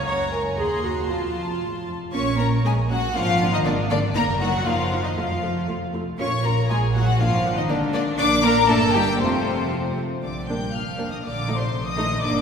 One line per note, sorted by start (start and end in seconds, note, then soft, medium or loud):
0.00 0.58 A#5 medium
0.06 0.54 F#1 medium
0.06 0.54 F#2 medium
0.06 0.32 C#5 medium
0.06 0.30 F#5 medium
0.06 0.54 A#5 medium
0.32 0.40 A#4 medium
0.32 0.58 G#5 medium
0.58 1.10 D#2 medium
0.58 0.83 G#4 medium
0.58 1.10 A#5 medium
0.58 1.08 C6 medium
0.58 1.09 C6 medium
0.84 1.10 F#4 medium
1.09 1.94 F1 soft
1.09 1.57 F2 medium
1.09 1.88 F4 medium
1.09 1.93 A5 soft
1.09 1.88 A5 medium
1.09 1.92 C6 soft
1.62 1.70 A2 medium
1.88 1.96 F2 soft
2.13 2.59 A#1 medium
2.13 2.21 A#3 medium
2.13 2.37 C#4 medium
2.13 2.21 C#4 medium
2.13 2.37 C#5 medium
2.13 2.37 C#6 medium
2.38 2.65 A#3 medium
2.38 2.47 A#3 medium
2.38 2.47 C#4 medium
2.38 2.65 A#4 medium
2.38 2.47 A#5 medium
2.64 3.10 A#1 medium
2.64 2.72 G#3 medium
2.64 2.73 A#3 medium
2.64 2.73 C#4 medium
2.64 2.73 G#4 medium
2.64 2.74 G#5 medium
2.90 2.98 F#3 medium
2.90 2.98 A#3 medium
2.90 2.98 C#4 medium
2.90 3.16 F#4 medium
2.90 3.15 F#5 loud
3.15 3.60 G#1 medium
3.15 3.52 F3 medium
3.15 3.23 A#3 medium
3.15 3.23 D4 medium
3.15 3.53 F4 medium
3.15 3.54 F5 loud
3.41 3.49 A#3 medium
3.41 3.49 D4 medium
3.53 3.58 D#3 medium
3.53 3.66 D#4 medium
3.53 3.58 D#5 loud
3.64 4.10 G#1 medium
3.64 3.73 D3 medium
3.64 3.73 A#3 medium
3.64 3.73 D4 medium
3.64 3.90 D4 medium
3.64 3.72 D5 loud
3.90 3.98 D3 medium
3.90 3.98 A#3 medium
3.90 3.99 D4 medium
3.90 3.98 D5 loud
4.15 4.60 F#1 medium
4.15 4.24 A#3 medium
4.15 4.24 A#3 loud
4.15 4.24 D#4 medium
4.15 4.40 A#4 loud
4.15 4.23 A#5 loud
4.41 4.65 F#3 medium
4.41 4.49 A#3 medium
4.41 4.49 D#4 medium
4.41 4.66 F#4 medium
4.41 4.65 F#5 loud
4.65 5.10 F#1 medium
4.65 5.04 F3 medium
4.65 4.74 A#3 medium
4.65 4.74 D#4 medium
4.65 5.04 F4 medium
4.65 5.04 F5 medium
4.91 4.99 A#3 medium
4.91 4.99 D#4 medium
5.03 5.17 D#3 medium
5.03 5.09 D#4 medium
5.03 5.17 D#5 medium
5.16 5.62 F1 medium
5.16 5.68 F3 medium
5.16 5.25 A3 medium
5.16 5.25 F4 medium
5.16 5.67 F4 medium
5.16 5.68 F5 medium
5.42 5.50 A3 soft
5.42 5.50 F4 soft
5.68 6.13 F1 medium
5.68 5.76 A3 medium
5.68 5.76 F4 medium
5.93 6.01 A3 soft
5.93 6.02 F4 soft
6.19 6.64 A#1 medium
6.19 6.27 A#3 medium
6.19 6.27 C#4 medium
6.19 6.27 F4 medium
6.19 6.43 C#5 medium
6.19 6.43 C#6 medium
6.44 6.52 A#3 soft
6.44 6.53 A#3 medium
6.44 6.52 F4 medium
6.44 6.70 A#4 medium
6.44 6.70 A#5 medium
6.68 7.14 A#1 medium
6.68 6.78 G#3 medium
6.68 6.78 A#3 medium
6.68 6.78 F4 medium
6.68 6.94 G#4 medium
6.68 6.78 G#5 medium
6.94 7.19 F#3 medium
6.94 7.03 A#3 medium
6.94 7.03 F4 medium
6.94 7.19 F#4 medium
6.94 7.19 F#5 medium
7.19 7.63 G#1 medium
7.19 7.56 F3 medium
7.19 7.28 A#3 medium
7.19 7.28 D4 medium
7.19 7.56 F4 medium
7.19 7.57 F5 loud
7.45 7.53 A#3 medium
7.45 7.53 D4 medium
7.57 7.69 D#3 medium
7.57 7.69 D#4 medium
7.57 7.62 D#5 medium
7.69 8.13 G#1 medium
7.69 7.93 D3 medium
7.69 7.77 A#3 medium
7.69 7.93 D4 medium
7.69 7.77 D4 medium
7.69 7.77 D5 loud
7.94 8.02 D3 medium
7.94 8.02 A#3 medium
7.94 8.02 D4 medium
7.94 8.18 D4 medium
7.94 8.02 D5 loud
8.18 8.65 A#1 medium
8.18 8.66 A#3 medium
8.18 8.43 D4 loud
8.18 8.66 D4 medium
8.18 8.27 D5 loud
8.18 8.44 D6 loud
8.44 8.52 A#3 loud
8.44 8.69 A#4 loud
8.44 8.69 A#5 loud
8.68 9.20 G1 loud
8.68 8.77 A3 loud
8.68 9.19 A#3 loud
8.68 8.77 D4 medium
8.68 8.95 A4 loud
8.68 8.94 A5 loud
8.95 9.20 G3 medium
8.95 9.03 D#4 medium
8.95 9.20 G4 loud
8.95 9.20 G5 loud
9.20 10.02 F1 medium
9.20 9.96 C3 medium
9.20 9.66 A3 medium
9.20 9.96 C4 medium
9.20 9.66 F4 medium
9.20 9.96 C5 medium
9.72 9.80 F3 medium
9.97 10.05 A3 medium
10.22 10.65 A#1 soft
10.22 10.46 D3 soft
10.22 10.46 D5 soft
10.22 10.47 D6 medium
10.48 10.73 G3 soft
10.48 10.60 A#3 soft
10.48 10.60 D4 soft
10.48 10.74 G5 medium
10.48 10.73 G6 medium
10.73 11.15 F1 medium
10.73 11.11 F3 soft
10.73 11.10 F5 soft
10.73 11.11 F6 medium
10.98 11.10 A#3 soft
10.98 11.10 D4 medium
11.11 11.16 D#3 medium
11.11 11.23 D#5 medium
11.11 11.16 D#6 medium
11.23 11.65 A#1 medium
11.23 11.56 D3 medium
11.23 11.56 D5 medium
11.23 11.56 D6 medium
11.48 11.60 A3 medium
11.48 11.60 D#4 medium
11.56 11.90 C3 medium
11.56 11.89 C5 medium
11.56 11.89 C6 medium
11.72 12.13 A#1 medium
11.89 12.22 D#3 medium
11.89 12.22 D#5 medium
11.89 12.21 D#6 medium
11.97 12.09 A3 medium
11.97 12.09 D#4 medium
12.21 12.41 G1 medium
12.21 12.41 D3 medium
12.21 12.41 A#3 medium
12.21 12.41 D4 medium
12.21 12.41 D5 medium
12.21 12.41 D6 loud